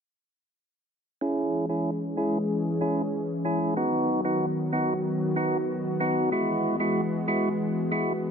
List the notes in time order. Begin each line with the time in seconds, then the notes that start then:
1.21 E3 G#3 C#4 E4 G#4
1.69 C#4 E4 G#4
2.17 C#4 E4 G#4
2.81 C#4 E4 G#4
3.45 C#4 E4 G#4
3.77 D#3 F#3 B3 D#4 F#4
4.25 B3 D#4 F#4
4.73 B3 D#4 F#4
5.36 B3 D#4 F#4
6.00 B3 D#4 F#4
6.32 E3 G#3 E4 F#4
6.80 G#3 E4 F#4
7.28 G#3 E4 F#4
7.91 G#3 E4 F#4